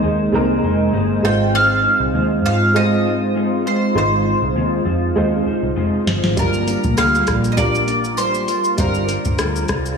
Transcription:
Already playing: G#3 A#3 C4 D#4 A#4
0.02 D#2 G#3 D#4 G#4 C5
0.32 C2 A#2 D#3 G#3 C4 D#4 G#4 A#4 C5
0.63 F1 G#3 D#4 G#4 C5
0.93 G1 G#3 D#4 G#4 C5
1.23 G#1 G#3 C4 D#4 F4 C5 G5
1.54 G#3 D#4 F4 C5 F5
1.84 D#4 F4 C5
2.00 C2
2.14 D#2 G#3 D#4 F4 C5
2.44 G#2 D#4 F4 C5 F5
2.74 G#3 D#4 F4 C5 D#5
3.05 D#4 F4 C5
3.35 G#3 D#4 F4 C5
3.65 D#4 F4 C5
3.95 G#1 G#3 D#4 F4 C5
4.26 D#4 F4 C5
4.42 C2
4.55 D#2 G#3 D#4 F4 C5
4.85 F2 D#4 F4 C5
5.16 D#2 G#3 D#4 F4 C5
5.46 D#4 F4 C5, muted picked electric bass stroke
5.63 C2
5.76 F1 G#3 D#4 F4 C5
6.06 G1 D#4 F4 C5, snare
6.23 G#1, snare
6.36 G1 G3 A#3 D4 F4 A#4, kick, closed hi-hat, tambourine, shaker
6.53 shaker
6.67 D4 F4 A#4, closed hi-hat, tambourine, shaker
6.84 A#1, kick, shaker
6.97 D2 G3 D4 F4 A#4 F5, cross-stick, closed hi-hat, tambourine, shaker
7.15 shaker
7.27 A#1 D4 F4 A#4, kick, cross-stick, closed hi-hat, tambourine, shaker
7.44 shaker
7.52 D#5
7.57 G3 D4 F4 A#4 D5, kick, closed hi-hat, shaker
7.75 shaker
7.86 D4 F4 A#4, closed hi-hat, shaker
8.04 shaker
8.17 G3 D4 F4 A#4 C5, closed hi-hat, tambourine, shaker
8.34 shaker
8.48 D4 F4 A#4, closed hi-hat, tambourine, shaker
8.64 shaker
8.77 G1 G3 D4 F4 A#4 C5, kick, closed hi-hat, shaker
8.94 shaker
9.08 D4 F4 A#4, closed hi-hat, shaker
9.25 G1, kick, shaker
9.38 D2 G3 D4 F4 A#4, cross-stick, closed hi-hat, shaker
9.56 shaker
9.68 C2 D4 F4 A#4, kick, cross-stick, closed hi-hat, shaker
9.86 shaker

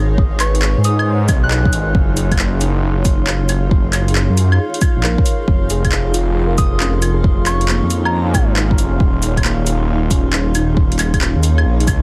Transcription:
Already playing: G#1 D#4 F4 G#4 A#4 C#5 G#5
0.18 kick
0.40 B4 C#6, clap, closed hi-hat, cabasa, claves
0.55 closed hi-hat
0.62 clap
0.78 G#2
0.84 D#6, closed hi-hat, cabasa
0.99 claves
1.28 B1 D#5, kick, closed hi-hat, cabasa, claves
1.44 F#6
1.51 clap
1.65 kick
1.73 G#1, closed hi-hat, cabasa
1.95 F#1, kick
2.17 closed hi-hat, cabasa
2.32 kick, closed hi-hat, claves
2.39 clap
2.58 F5, closed hi-hat, cabasa
3.05 kick, closed hi-hat, cabasa
3.27 clap
3.49 closed hi-hat, cabasa, claves
3.71 kick
3.93 clap, closed hi-hat, cabasa, claves
4.08 closed hi-hat
4.15 clap
4.30 F#2
4.37 closed hi-hat, cabasa
4.52 claves
4.74 closed hi-hat
4.81 kick, closed hi-hat, cabasa, claves
4.96 A#1
5.03 A#4, clap
5.18 kick
5.24 C#5, closed hi-hat, cabasa
5.48 F1 D#4, kick
5.68 G#4, closed hi-hat, cabasa
5.85 kick, closed hi-hat, claves
5.92 clap
6.14 F4, closed hi-hat, cabasa
6.34 G#4 C#5
6.47 A#4
6.58 D#6, kick, closed hi-hat, cabasa
6.80 C#4, clap
7.01 F4, closed hi-hat, cabasa, claves
7.13 G#4
7.24 kick
7.46 C#6, clap, closed hi-hat, cabasa, claves
7.61 closed hi-hat
7.68 A#3, clap
7.83 F2
7.90 closed hi-hat, cabasa
8.05 A#5, claves
8.34 G#1, kick, closed hi-hat, cabasa, claves
8.56 clap
8.71 kick
8.78 F1 C#4, closed hi-hat, cabasa
9.00 D#1, kick
9.23 closed hi-hat, cabasa
9.37 kick, closed hi-hat, claves
9.44 A#3, clap
9.67 closed hi-hat, cabasa
10.11 C#4, kick, closed hi-hat, cabasa
10.33 clap
10.55 D#4, closed hi-hat, cabasa, claves
10.77 kick
10.92 closed hi-hat
10.99 clap, closed hi-hat, cabasa, claves
11.14 kick, closed hi-hat, claves
11.21 F4, clap
11.36 D#2
11.43 closed hi-hat, cabasa
11.58 claves
11.65 A#1
11.80 closed hi-hat
11.87 C#2, kick, closed hi-hat, cabasa, claves

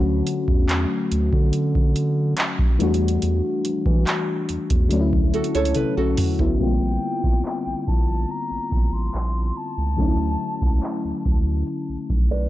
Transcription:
Already playing: D2 D3 F#3 A3 C#4 F#4
0.27 closed hi-hat
0.48 E2, kick
0.69 clap, closed hi-hat
1.12 D2, closed hi-hat
1.33 D3, kick
1.53 closed hi-hat
1.75 kick
1.96 closed hi-hat
2.37 clap, closed hi-hat
2.59 kick
2.79 E2 E3 G3 A3 D4, closed hi-hat
2.83 F#4
2.94 closed hi-hat
3.08 closed hi-hat
3.22 E2, closed hi-hat
3.65 E3, closed hi-hat
3.86 E3, kick
4.07 clap, closed hi-hat
4.49 E2, closed hi-hat
4.70 E2, kick, closed hi-hat
4.89 D2 D3 F#3 A3 C#4, closed hi-hat
4.94 D4
5.00 E4
5.13 kick
5.34 C#2 F#4 A4, closed hi-hat
5.44 closed hi-hat
5.55 C#2 A4 C#5, closed hi-hat
5.65 closed hi-hat
5.75 B1 E4 A4 B4, closed hi-hat, high tom
5.97 B1 C#4 F#4 A4
6.17 mid tom, open hi-hat
6.39 A1 B3 E4, floor tom
6.59 A#1 D3 G3 A#3 C4 G5, kick, closed hi-hat
6.63 F4
7.03 closed hi-hat
7.24 A1, kick
7.45 clap, closed hi-hat
7.67 A#1
7.87 A#1 A5, kick, closed hi-hat
8.30 A#5, closed hi-hat
8.51 A1
8.72 A1, kick, closed hi-hat
8.93 C6
9.13 A#1, clap, closed hi-hat
9.56 A5, closed hi-hat
9.78 C#2
9.96 D2 D3 F#3 A3 C#4, kick, closed hi-hat
10.01 D#4
10.07 E4
10.41 closed hi-hat
10.62 C#2, kick
10.83 clap, closed hi-hat
11.05 D2
11.25 D2, kick, closed hi-hat
11.67 closed hi-hat
11.89 B1
12.10 B1, kick, closed hi-hat
12.31 B4 D5

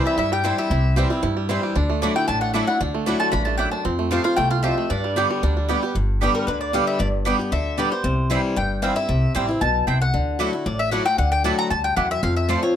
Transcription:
Already playing: C3 E3 G3 C4 E4 G4
0.06 G3 E5
0.18 G2 E4 E5
0.32 G3 G5
0.44 E3 G3 C4 E4 C5 G5
0.58 G4 E5
0.70 C2 C3 E4
0.96 E3 G3 C4 E4 G4 C5 G5
1.10 G3 C4 E4
1.23 G2 E4
1.37 G3
1.49 E3 G3 C4 E4 C5 G5
1.63 G4
1.76 D2 D3 D4
1.90 A3
2.02 F#3 A3 D4 E4 F#4 D5 F#5
2.16 A3 E4 F#4 G5
2.28 A1 A2 D4 A5
2.41 A3 F#5
2.53 F#3 A3 D4 E4 F#4 D5 E5 F#5
2.67 D4 E4 F#4 F#5
2.81 D2 D3 D4
2.95 A3
3.06 F#3 A3 D4 E4 F#4 D5 F#5
3.20 A3 A5
3.32 A1 G2 D4 B5
3.45 A3 A5
3.58 F#2 A3 D4 E4 D5 F#5 G5
3.71 D4 A5
3.85 F2 C4
3.99 A3
4.11 F3 A3 C4 F4 G4 C5 A5
4.24 C4 F4 F5
4.36 C2 E2 A3 G5
4.51 F4 F5
4.63 F2 C4 F4 G4 C5 E5 A5
4.78 A3
4.90 G2 D4 D5
5.04 G3
5.16 D3 G3 B3 G4 D5 G5
5.31 G3
5.43 D2 D3 D4
5.57 G3
5.68 D3 G3 B3 G4 D5 G5
5.82 B3 G4
5.95 G1 G2
6.21 D3 G3 B3 G4 D5 G5
6.35 A#4
6.47 D2 D3 B4
6.61 D5
6.73 D3 G3 B3 G4 D5 F5 G5
6.87 E5
6.99 G1 G2 D5
7.25 D3 G3 B3 G4 D5 G5
7.39 B3 G4
7.52 D2 D3 E5
7.77 D3 G3 B3 G4 D5 G5
7.91 B3 G4 C5
8.04 C2 C3
8.30 E3 G3 C4 E4 C5 G5
8.56 G1 G2 G5
8.82 E3 G3 C4 E4 C5 F5 G5
8.96 C4 E4 E5
9.09 C2 C3
9.35 A1 E3 G3 C4 E4 C5 G5
9.49 C4 E4
9.61 B1 B2 A5
9.87 C2 C3 C4 E4 C5 G5
10.02 F#5
10.14 D2 D3
10.39 F#3 A3 E4 F#4 D5 F#5
10.53 E4 F#4
10.66 A1 A2 D5
10.79 E5
10.91 F#3 A3 E4 F#4 D5 F#5
11.06 E4 F#4 G5
11.18 D2 D3 F#5
11.32 G5
11.44 F#3 A3 E4 F#4 D5 F#5 A5
11.59 A#5
11.70 D2 G2 A5
11.84 G5
11.96 E2 F#2 A3 E4 D5 F#5
12.11 E5
12.23 F2 F5
12.36 E5
12.49 F3 A3 C4 F4 C5 D5 A5
12.62 C4 F4 C#5

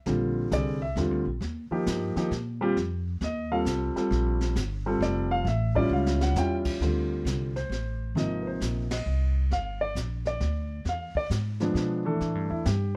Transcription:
0.06 A#1 D3 G3 C4 F4, brush sweep, snare
0.51 C2 D3 G3 C4 G#4 D5, snare, hi-hat pedal
0.82 E5
0.96 E2 D3 G3 C4 F4, snare
1.11 D2
1.25 A#1
1.41 D#2, brush sweep, snare
1.71 F3 A#3 D#4 G4, muted upright bass stroke
1.86 G2, snare, hi-hat pedal
2.16 F3 A#3 D#4 G4, muted upright bass stroke, snare
2.31 A#2, snare
2.61 G3 C4 F4 G4
2.77 F2, brush sweep, snare
3.21 D#2 D#5, snare
3.52 G3 C4 F4 A4 F5
3.65 C2, snare, hi-hat pedal
3.96 G3 C4 F4 A4, muted upright bass stroke, snare
4.11 A#1, brush sweep, snare
4.41 snare
4.56 G1, snare, hi-hat pedal
4.86 G3 C4 F4 A4
5.01 F1 D5, snare
5.31 F5
5.45 A1 E5, brush sweep, snare
5.75 G3 C#4 E4 F4 D5, kick
5.89 C#2 F5
6.06 snare
6.21 F#5, snare
6.35 E2 G3 C#4 E4 F4 G5, snare, hi-hat pedal
6.65 kick, crash
6.80 D2 D3 G3 C4 F4, brush sweep, snare
7.25 C2, snare, hi-hat pedal
7.56 C5, snare
7.69 A1, snare
8.15 G#1 C3 F3 A#3 D#4 D#5, brush sweep, snare
8.43 B4
8.47 C5
8.61 A#1, snare, hi-hat pedal
8.91 D#5, snare, ride
9.06 C2
9.51 G1 F5, brush sweep, snare
9.81 D5
9.95 A#1, snare, hi-hat pedal
10.25 D5, snare
10.40 D2, snare
10.85 E2, brush sweep, snare
10.89 F5
11.15 D5, muted upright bass stroke, kick
11.30 G#2, snare, hi-hat pedal
11.60 F3 G#3 B3 D4, snare
11.75 B2, snare
12.05 E3 A3 D4 A4
12.21 A2, brush sweep, snare
12.35 G2
12.50 E2 E4
12.65 G2 G4, snare, hi-hat pedal

